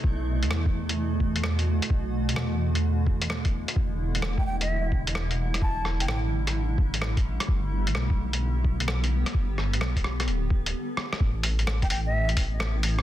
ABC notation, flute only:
X:1
M:4/4
L:1/16
Q:"Swing 16ths" 1/4=129
K:Ador
V:1 name="Flute"
z16 | z16 | z4 z g g e2 z6 z | a2 z g g z8 z3 |
z16 | z16 | z4 z g g e2 z6 z |]